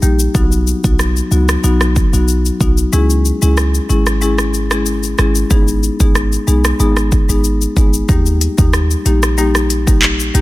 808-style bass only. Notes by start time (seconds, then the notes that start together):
0.02 A#1
0.35 B1
0.84 B1
1.31 C#2
1.64 B1
2.13 B1
2.61 B1
2.93 C#2
3.42 C#2
3.90 G#1
5.19 G#1
5.51 G#1
6.00 G#1
6.48 B1
6.80 G#1
7.29 G#1
7.77 G#1
8.09 D#2
8.58 D#2
9.06 A#1
10.35 A#1